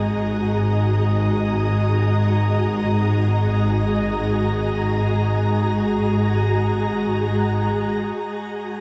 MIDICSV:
0, 0, Header, 1, 4, 480
1, 0, Start_track
1, 0, Tempo, 500000
1, 8453, End_track
2, 0, Start_track
2, 0, Title_t, "Ambient pad"
2, 0, Program_c, 0, 92
2, 0, Note_on_c, 0, 56, 57
2, 0, Note_on_c, 0, 66, 62
2, 0, Note_on_c, 0, 68, 69
2, 0, Note_on_c, 0, 75, 79
2, 0, Note_on_c, 0, 82, 82
2, 7836, Note_off_c, 0, 75, 0
2, 8453, Note_off_c, 0, 56, 0
2, 8453, Note_off_c, 0, 66, 0
2, 8453, Note_off_c, 0, 68, 0
2, 8453, Note_off_c, 0, 82, 0
2, 8453, End_track
3, 0, Start_track
3, 0, Title_t, "Synth drone"
3, 0, Program_c, 1, 95
3, 7841, Note_on_c, 1, 56, 66
3, 7847, Note_on_c, 1, 68, 65
3, 8453, Note_off_c, 1, 56, 0
3, 8453, Note_off_c, 1, 68, 0
3, 8453, End_track
4, 0, Start_track
4, 0, Title_t, "Double bass section"
4, 0, Program_c, 2, 48
4, 0, Note_on_c, 2, 32, 74
4, 7780, Note_off_c, 2, 32, 0
4, 7832, Note_on_c, 2, 32, 61
4, 8453, Note_off_c, 2, 32, 0
4, 8453, End_track
0, 0, End_of_file